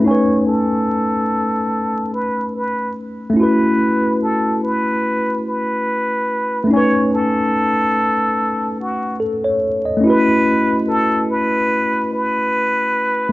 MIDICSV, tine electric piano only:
0, 0, Header, 1, 2, 480
1, 0, Start_track
1, 0, Tempo, 833333
1, 21, Time_signature, 4, 2, 24, 8
1, 7673, End_track
2, 0, Start_track
2, 0, Title_t, "Tine electric piano"
2, 0, Program_c, 0, 4
2, 0, Control_c, 0, 64, 127
2, 0, Note_on_c, 0, 57, 63
2, 4, Note_on_c, 0, 61, 56
2, 25, Note_on_c, 0, 63, 61
2, 28, Control_c, 0, 64, 0
2, 44, Note_on_c, 0, 80, 60
2, 63, Note_on_c, 0, 71, 67
2, 133, Control_c, 0, 64, 127
2, 1893, Note_off_c, 0, 57, 0
2, 1900, Note_on_c, 0, 57, 71
2, 1910, Note_off_c, 0, 61, 0
2, 1920, Note_off_c, 0, 63, 0
2, 1920, Note_on_c, 0, 61, 58
2, 1930, Note_off_c, 0, 80, 0
2, 1938, Note_on_c, 0, 64, 62
2, 1939, Note_off_c, 0, 71, 0
2, 1948, Control_c, 0, 64, 0
2, 1958, Note_on_c, 0, 66, 63
2, 1976, Note_on_c, 0, 71, 62
2, 2061, Control_c, 0, 64, 127
2, 3818, Note_off_c, 0, 57, 0
2, 3824, Note_on_c, 0, 57, 72
2, 3828, Note_off_c, 0, 61, 0
2, 3837, Note_off_c, 0, 64, 0
2, 3844, Note_on_c, 0, 61, 64
2, 3847, Note_off_c, 0, 66, 0
2, 3856, Note_off_c, 0, 71, 0
2, 3861, Note_on_c, 0, 63, 64
2, 3868, Control_c, 0, 64, 0
2, 3880, Note_on_c, 0, 80, 60
2, 3899, Note_on_c, 0, 71, 75
2, 3978, Control_c, 0, 64, 127
2, 5287, Note_off_c, 0, 80, 0
2, 5297, Note_off_c, 0, 71, 0
2, 5299, Note_on_c, 0, 69, 54
2, 5431, Note_off_c, 0, 69, 0
2, 5440, Note_on_c, 0, 73, 66
2, 5668, Note_off_c, 0, 73, 0
2, 5676, Note_on_c, 0, 75, 59
2, 5735, Note_off_c, 0, 57, 0
2, 5742, Note_on_c, 0, 57, 64
2, 5750, Note_off_c, 0, 61, 0
2, 5758, Note_off_c, 0, 63, 0
2, 5762, Note_on_c, 0, 61, 61
2, 5782, Note_on_c, 0, 64, 62
2, 5788, Control_c, 0, 64, 0
2, 5799, Note_on_c, 0, 66, 58
2, 5817, Note_on_c, 0, 71, 72
2, 5896, Control_c, 0, 64, 127
2, 5905, Note_off_c, 0, 75, 0
2, 7649, Note_off_c, 0, 57, 0
2, 7655, Note_on_c, 0, 57, 63
2, 7669, Note_off_c, 0, 61, 0
2, 7673, Note_off_c, 0, 57, 0
2, 7673, Note_off_c, 0, 64, 0
2, 7673, Note_off_c, 0, 66, 0
2, 7673, Note_off_c, 0, 71, 0
2, 7673, End_track
0, 0, End_of_file